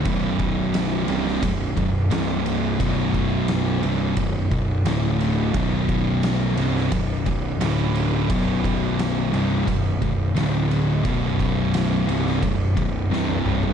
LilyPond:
<<
  \new Staff \with { instrumentName = "Distorted electric guitar" } { \clef bass \time 4/4 \key d \lydian \tempo 4 = 87 <b,, fis, b,>4. <c, g, c>8 <b,, fis,>8 <b,, fis,>8 <c, g, c>4 | <b,, fis, b,>4. <c, g, c>8 <b,, fis,>8 <b,, fis,>8 <d, a, d>4 | <b,, fis, b,>4. <c, g, c>8 <b,, fis,>8 <b,, fis,>8 <d, a, d>4 | <b,, fis, b,>4. <c, g, c>8 <b,, fis,>8 <b,, fis,>8 <d, a, d>4 |
<b,, fis, b,>4. <c, g, c>8 <b,, fis,>8 <b,, fis,>8 <c, g, c>4 | }
  \new Staff \with { instrumentName = "Distorted electric guitar" } { \clef bass \time 4/4 \key d \lydian <b,, fis, b,>4. <c, g, c>8 <b,, fis,>8 <b,, fis,>8 <c, g, c>4 | <b,, fis, b,>4. <c, g, c>8 <b,, fis,>8 <b,, fis,>8 <d, a, d>4 | <b,, fis, b,>4. <c, g, c>8 <b,, fis,>8 <b,, fis,>8 <d, a, d>4 | <b,, fis, b,>4. <c, g, c>8 <b,, fis,>8 <b,, fis,>8 <d, a, d>4 |
<b,, fis, b,>4. <c, g, c>8 <b,, fis,>8 <b,, fis,>8 <c, g, c>4 | }
  \new Staff \with { instrumentName = "Picked electric bass" } { \clef bass \time 4/4 \key d \lydian b,,,4. c,,8 b,,,8 b,,,8 c,,4 | b,,,4. c,,8 b,,,8 b,,,8 d,,4 | b,,,4. c,,8 b,,,8 b,,,8 d,,4 | b,,,4. c,,8 b,,,8 b,,,8 d,,4 |
b,,,4. c,,8 b,,,8 b,,,8 c,,4 | }
  \new DrumStaff \with { instrumentName = "Drums" } \drummode { \time 4/4 <bd cymr>8 <bd cymr>8 <cymr sn>8 cymr16 sn16 <bd cymr>8 <bd cymr>8 <cymr sn>8 cymr8 | <bd cymr>8 <bd cymr>8 <cymr sn>8 cymr8 <bd cymr>8 <bd cymr>8 <cymr sn>8 cymr8 | <bd cymr>8 <bd cymr>8 <cymr sn>8 cymr16 sn16 <bd cymr>8 <bd cymr>8 <cymr sn>8 cymr8 | <bd cymr>8 <bd cymr>8 <cymr sn>8 cymr8 <bd cymr>8 <bd cymr>8 <cymr sn>8 cymr8 |
<bd cymr>8 <bd cymr>8 <cymr sn>8 cymr16 sn16 <bd cymr>8 <bd cymr>8 sn16 tommh16 toml16 tomfh16 | }
>>